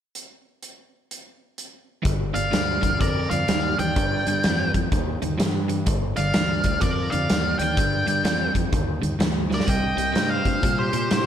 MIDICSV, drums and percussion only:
0, 0, Header, 1, 2, 480
1, 0, Start_track
1, 0, Key_signature, -2, "minor"
1, 0, Tempo, 476948
1, 144, Time_signature, 4, 2, 24, 8
1, 11334, End_track
2, 0, Start_track
2, 0, Title_t, "Drums"
2, 152, Note_on_c, 9, 42, 55
2, 253, Note_off_c, 9, 42, 0
2, 629, Note_on_c, 9, 42, 51
2, 730, Note_off_c, 9, 42, 0
2, 1118, Note_on_c, 9, 42, 54
2, 1219, Note_off_c, 9, 42, 0
2, 1590, Note_on_c, 9, 42, 53
2, 1691, Note_off_c, 9, 42, 0
2, 2065, Note_on_c, 9, 36, 107
2, 2065, Note_on_c, 9, 42, 78
2, 2165, Note_off_c, 9, 36, 0
2, 2166, Note_off_c, 9, 42, 0
2, 2370, Note_on_c, 9, 42, 56
2, 2471, Note_off_c, 9, 42, 0
2, 2548, Note_on_c, 9, 42, 76
2, 2553, Note_on_c, 9, 38, 100
2, 2648, Note_off_c, 9, 42, 0
2, 2653, Note_off_c, 9, 38, 0
2, 2848, Note_on_c, 9, 36, 67
2, 2851, Note_on_c, 9, 42, 64
2, 2949, Note_off_c, 9, 36, 0
2, 2952, Note_off_c, 9, 42, 0
2, 3026, Note_on_c, 9, 36, 106
2, 3027, Note_on_c, 9, 42, 73
2, 3126, Note_off_c, 9, 36, 0
2, 3128, Note_off_c, 9, 42, 0
2, 3333, Note_on_c, 9, 42, 61
2, 3434, Note_off_c, 9, 42, 0
2, 3506, Note_on_c, 9, 42, 81
2, 3511, Note_on_c, 9, 38, 108
2, 3607, Note_off_c, 9, 42, 0
2, 3612, Note_off_c, 9, 38, 0
2, 3815, Note_on_c, 9, 42, 53
2, 3916, Note_off_c, 9, 42, 0
2, 3988, Note_on_c, 9, 42, 83
2, 3989, Note_on_c, 9, 36, 112
2, 4089, Note_off_c, 9, 42, 0
2, 4090, Note_off_c, 9, 36, 0
2, 4294, Note_on_c, 9, 42, 55
2, 4395, Note_off_c, 9, 42, 0
2, 4464, Note_on_c, 9, 42, 62
2, 4469, Note_on_c, 9, 38, 91
2, 4565, Note_off_c, 9, 42, 0
2, 4570, Note_off_c, 9, 38, 0
2, 4774, Note_on_c, 9, 36, 73
2, 4775, Note_on_c, 9, 42, 58
2, 4875, Note_off_c, 9, 36, 0
2, 4876, Note_off_c, 9, 42, 0
2, 4950, Note_on_c, 9, 42, 71
2, 4951, Note_on_c, 9, 36, 102
2, 5051, Note_off_c, 9, 42, 0
2, 5052, Note_off_c, 9, 36, 0
2, 5255, Note_on_c, 9, 42, 52
2, 5356, Note_off_c, 9, 42, 0
2, 5431, Note_on_c, 9, 42, 72
2, 5436, Note_on_c, 9, 38, 97
2, 5532, Note_off_c, 9, 42, 0
2, 5537, Note_off_c, 9, 38, 0
2, 5730, Note_on_c, 9, 42, 52
2, 5831, Note_off_c, 9, 42, 0
2, 5902, Note_on_c, 9, 42, 83
2, 5906, Note_on_c, 9, 36, 113
2, 6002, Note_off_c, 9, 42, 0
2, 6007, Note_off_c, 9, 36, 0
2, 6205, Note_on_c, 9, 42, 57
2, 6305, Note_off_c, 9, 42, 0
2, 6377, Note_on_c, 9, 42, 69
2, 6382, Note_on_c, 9, 38, 103
2, 6478, Note_off_c, 9, 42, 0
2, 6483, Note_off_c, 9, 38, 0
2, 6680, Note_on_c, 9, 42, 59
2, 6687, Note_on_c, 9, 36, 74
2, 6781, Note_off_c, 9, 42, 0
2, 6787, Note_off_c, 9, 36, 0
2, 6855, Note_on_c, 9, 42, 77
2, 6862, Note_on_c, 9, 36, 95
2, 6956, Note_off_c, 9, 42, 0
2, 6962, Note_off_c, 9, 36, 0
2, 7170, Note_on_c, 9, 42, 55
2, 7270, Note_off_c, 9, 42, 0
2, 7342, Note_on_c, 9, 42, 83
2, 7347, Note_on_c, 9, 38, 100
2, 7443, Note_off_c, 9, 42, 0
2, 7448, Note_off_c, 9, 38, 0
2, 7643, Note_on_c, 9, 42, 59
2, 7743, Note_off_c, 9, 42, 0
2, 7823, Note_on_c, 9, 36, 109
2, 7824, Note_on_c, 9, 42, 86
2, 7924, Note_off_c, 9, 36, 0
2, 7925, Note_off_c, 9, 42, 0
2, 8127, Note_on_c, 9, 42, 59
2, 8228, Note_off_c, 9, 42, 0
2, 8301, Note_on_c, 9, 42, 73
2, 8306, Note_on_c, 9, 38, 95
2, 8402, Note_off_c, 9, 42, 0
2, 8407, Note_off_c, 9, 38, 0
2, 8605, Note_on_c, 9, 36, 75
2, 8608, Note_on_c, 9, 42, 53
2, 8706, Note_off_c, 9, 36, 0
2, 8708, Note_off_c, 9, 42, 0
2, 8783, Note_on_c, 9, 36, 99
2, 8783, Note_on_c, 9, 42, 76
2, 8883, Note_off_c, 9, 36, 0
2, 8884, Note_off_c, 9, 42, 0
2, 9089, Note_on_c, 9, 42, 56
2, 9190, Note_off_c, 9, 42, 0
2, 9260, Note_on_c, 9, 42, 67
2, 9265, Note_on_c, 9, 38, 106
2, 9361, Note_off_c, 9, 42, 0
2, 9366, Note_off_c, 9, 38, 0
2, 9574, Note_on_c, 9, 38, 53
2, 9662, Note_off_c, 9, 38, 0
2, 9662, Note_on_c, 9, 38, 77
2, 9740, Note_on_c, 9, 36, 112
2, 9740, Note_on_c, 9, 42, 81
2, 9763, Note_off_c, 9, 38, 0
2, 9841, Note_off_c, 9, 36, 0
2, 9841, Note_off_c, 9, 42, 0
2, 10044, Note_on_c, 9, 42, 53
2, 10145, Note_off_c, 9, 42, 0
2, 10219, Note_on_c, 9, 42, 63
2, 10224, Note_on_c, 9, 38, 97
2, 10320, Note_off_c, 9, 42, 0
2, 10325, Note_off_c, 9, 38, 0
2, 10521, Note_on_c, 9, 36, 71
2, 10523, Note_on_c, 9, 42, 56
2, 10621, Note_off_c, 9, 36, 0
2, 10623, Note_off_c, 9, 42, 0
2, 10699, Note_on_c, 9, 36, 99
2, 10700, Note_on_c, 9, 42, 83
2, 10800, Note_off_c, 9, 36, 0
2, 10801, Note_off_c, 9, 42, 0
2, 11000, Note_on_c, 9, 42, 52
2, 11101, Note_off_c, 9, 42, 0
2, 11179, Note_on_c, 9, 42, 80
2, 11184, Note_on_c, 9, 38, 109
2, 11279, Note_off_c, 9, 42, 0
2, 11284, Note_off_c, 9, 38, 0
2, 11334, End_track
0, 0, End_of_file